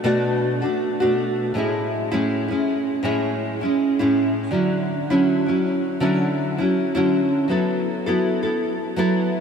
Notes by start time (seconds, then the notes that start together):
0.04 B2 A3 D4 F#4
0.62 A3 D4 F#4
1.00 B2 A3 D4 F#4
1.54 A2 G#3 C#4
1.58 E4
2.12 A2 G#3 C#4 E4
2.48 G#3 C#4 E4
3.03 A2 G#3 C#4 E4
3.61 G#3 C#4 E4
3.99 A2 G#3 C#4 E4
4.51 D3 F#3 C#4 E4
5.10 D3 F#3 C#4 E4
5.46 F#3 C#4 E4
6.00 D3 F#3 C#4 E4
6.58 F#3 C#4 E4
6.95 D3 F#3 C#4 E4
7.48 F#3 B3 E4 A4
8.06 F#3 B3 E4 A4
8.43 B3 E4 A4
8.96 F#3 B3 E4 A4